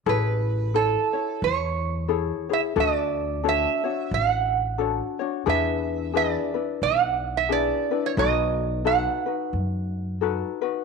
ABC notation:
X:1
M:4/4
L:1/16
Q:"Swing" 1/4=89
K:A
V:1 name="Resonator guitar played with a steel bar"
B4 A4 c6 e2 | d4 e4 f6 z2 | e4 d4 f3 e d3 c | ^d4 f8 z4 |]
V:2 name="Ukulele"
[EGAc]4 [EAc]2 [Ec]6 [EGAc]2 [EGc]2 | [DFA]4 [DFAc]2 [DFc]6 [DFAc]2 [DFc]2 | [DEGB]4 [DEGB]2 [DEB]6 [DEGB]2 [DEB]2 | [^DFAB]4 [DFAB]2 [DFB]6 [DFAB]2 [DFB]2 |]
V:3 name="Upright bass" clef=bass
A,,,8 E,,8 | D,,8 A,,,8 | E,,8 B,,,8 | B,,,8 F,,8 |]